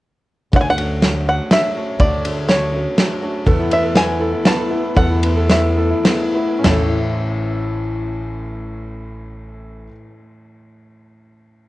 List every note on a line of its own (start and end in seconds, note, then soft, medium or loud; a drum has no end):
0.52 1.38 D2 medium
0.52 1.96 D2 medium
0.52 0.99 D3 medium
0.52 1.96 D3 medium
0.52 1.01 A3 medium
0.52 0.73 A3 medium
0.52 1.02 C#4 medium
0.52 0.74 D4 medium
0.52 0.74 F#4 medium
0.52 1.03 F#4 medium
0.52 0.74 C#5 medium
0.52 kick loud
0.52 ride soft
0.56 0.60 F#5 medium
0.61 0.67 G#5 medium
0.70 1.28 F#5 loud
0.77 0.97 A3 medium
0.77 0.98 D4 soft
0.77 0.98 F#4 medium
0.77 0.98 C#5 medium
0.77 ride soft
1.00 1.49 D3 medium
1.00 1.22 A3 medium
1.00 1.51 A3 medium
1.00 1.51 C#4 medium
1.00 1.22 D4 medium
1.00 1.22 F#4 medium
1.00 1.52 F#4 medium
1.00 1.23 C#5 medium
1.00 snare medium
1.00 ride soft
1.26 1.46 A3 medium
1.26 1.47 D4 medium
1.26 1.47 F#4 medium
1.26 1.47 C#5 medium
1.26 1.51 F#5 medium
1.50 1.71 A3 medium
1.50 1.71 D4 medium
1.50 1.72 F#4 medium
1.50 1.72 C#5 medium
1.50 2.02 E5 medium
1.50 snare medium
1.50 ride medium
1.75 1.96 A3 medium
1.75 1.99 A3 soft
1.75 2.01 C#4 soft
1.75 1.96 D4 soft
1.75 2.00 F#4 soft
1.75 1.96 F#4 medium
1.75 1.97 C#5 medium
1.99 2.84 D2 medium
1.99 3.43 D2 medium
1.99 2.47 D3 medium
1.99 3.43 D3 medium
1.99 2.20 A3 medium
1.99 2.49 A3 medium
1.99 2.20 D4 medium
1.99 2.20 F#4 medium
1.99 2.49 F#4 medium
1.99 2.21 C#5 medium
1.99 2.48 D5 medium
1.99 kick medium
1.99 ride medium
2.24 2.45 A3 medium
2.24 2.45 D4 medium
2.24 2.45 F#4 medium
2.24 2.45 C#5 medium
2.24 ride medium
2.48 2.73 D3 medium
2.48 2.69 A3 medium
2.48 2.73 A3 medium
2.48 2.72 C#4 medium
2.48 2.69 D4 medium
2.48 2.70 F#4 medium
2.48 2.71 F#4 medium
2.48 3.18 C#5 medium
2.48 2.70 C#5 medium
2.48 snare medium
2.48 ride medium
2.72 2.93 A3 medium
2.72 2.96 A3 soft
2.72 2.96 C#4 soft
2.72 2.93 D4 medium
2.72 2.97 F#4 medium
2.72 2.94 F#4 medium
2.72 2.94 C#5 medium
2.96 3.21 D3 medium
2.96 3.22 A3 medium
2.96 3.18 A3 medium
2.96 3.21 C#4 medium
2.96 3.18 D4 medium
2.96 3.18 F#4 medium
2.96 3.19 F#4 medium
2.96 3.19 C#5 medium
2.96 snare medium
2.96 ride medium
3.21 3.42 A3 medium
3.21 3.45 A3 soft
3.21 3.46 C#4 medium
3.21 3.42 D4 medium
3.21 3.46 F#4 medium
3.21 3.43 F#4 medium
3.21 3.43 C#5 medium
3.44 3.95 E2 medium
3.44 4.92 E2 medium
3.44 4.32 E2 medium
3.44 3.95 B2 medium
3.44 3.92 E3 medium
3.44 4.93 E3 medium
3.44 3.66 A3 medium
3.44 3.94 A3 medium
3.44 3.67 B3 medium
3.44 3.94 B3 medium
3.44 3.67 E4 medium
3.44 3.96 E4 medium
3.44 3.81 A4 medium
3.44 3.67 B4 medium
3.44 kick medium
3.44 ride soft
3.58 3.93 E4 medium
3.71 3.91 A3 medium
3.71 4.06 B3 medium
3.71 3.92 B3 soft
3.71 3.92 B4 medium
3.71 3.95 E5 medium
3.71 ride medium
3.83 4.19 A4 medium
3.92 4.42 E3 medium
3.92 4.15 A3 medium
3.92 4.43 A3 medium
3.92 4.15 B3 medium
3.92 4.44 B3 medium
3.92 4.31 E4 medium
3.92 4.16 E4 medium
3.92 4.16 B4 medium
3.92 snare medium
3.92 ride soft
3.96 4.46 E4 medium
3.96 4.46 G#5 loud
4.07 4.43 B3 medium
4.19 4.40 A3 medium
4.19 4.41 B3 medium
4.19 4.41 E4 medium
4.19 4.56 A4 medium
4.19 4.41 B4 medium
4.32 4.69 E4 medium
4.42 4.69 E3 medium
4.42 4.69 A3 medium
4.42 4.66 A3 medium
4.42 4.66 B3 medium
4.42 4.82 B3 medium
4.42 4.68 B3 medium
4.42 4.67 E4 medium
4.42 4.68 E4 medium
4.42 4.67 B4 medium
4.42 snare medium
4.42 ride medium
4.47 4.96 A5 loud
4.58 4.95 A4 medium
4.69 4.95 E3 soft
4.69 4.91 A3 medium
4.69 4.95 A3 soft
4.69 4.95 B3 medium
4.69 4.92 B3 medium
4.69 4.96 E4 medium
4.69 5.08 E4 medium
4.69 4.92 E4 medium
4.69 4.92 B4 medium
4.83 5.21 B3 medium
4.94 5.49 E2 medium
4.94 6.60 E2 medium
4.94 5.91 E2 medium
4.94 5.49 B2 medium
4.94 5.46 E3 medium
4.94 6.60 E3 medium
4.94 5.18 A3 medium
4.94 5.48 A3 medium
4.94 5.18 B3 medium
4.94 5.49 B3 medium
4.94 5.18 E4 medium
4.94 5.49 E4 medium
4.94 5.35 A4 medium
4.94 5.19 B4 medium
4.94 5.52 F#5 medium
4.94 kick medium
4.94 ride medium
5.10 5.48 E4 medium
5.22 5.45 A3 medium
5.22 5.45 B3 medium
5.22 5.77 B3 medium
5.22 5.45 E4 medium
5.22 5.45 B4 medium
5.22 ride medium
5.36 5.76 A4 medium
5.48 6.02 E3 medium
5.48 5.72 A3 medium
5.48 6.04 A3 medium
5.48 5.72 B3 medium
5.48 5.89 E4 medium
5.48 5.73 E4 medium
5.48 6.05 E4 medium
5.48 5.73 B4 medium
5.48 6.03 E5 medium
5.48 snare medium
5.48 ride medium
5.76 6.00 A3 medium
5.76 6.01 B3 medium
5.76 6.01 E4 medium
5.76 6.35 A4 medium
5.76 6.01 B4 medium
5.90 6.33 E4 medium
6.03 6.63 E3 medium
6.03 6.29 A3 medium
6.03 6.65 A3 medium
6.03 6.29 B3 medium
6.03 6.65 B3 medium
6.03 6.48 B3 medium
6.03 6.30 E4 medium
6.03 6.65 E4 medium
6.03 6.30 G#4 medium
6.03 snare medium
6.03 ride medium
6.34 6.59 A3 medium
6.34 6.59 B3 medium
6.34 6.63 E4 medium
6.34 6.60 E4 medium
6.34 6.60 B4 medium
6.50 6.65 B3 medium
6.57 10.07 A2 medium
6.57 9.81 C#4 medium
6.62 9.87 A1 medium
6.62 10.14 E3 medium
6.62 9.84 A3 medium
6.62 9.86 C#4 medium
6.62 9.87 E4 medium
6.62 9.88 A5 medium
6.62 snare medium
6.62 floor tom loud
6.62 ride bell medium
6.66 10.19 A3 medium
6.66 9.88 E4 medium
6.66 9.91 C#5 medium
6.71 9.93 A4 medium
6.75 10.25 C#4 medium
6.79 10.29 E4 medium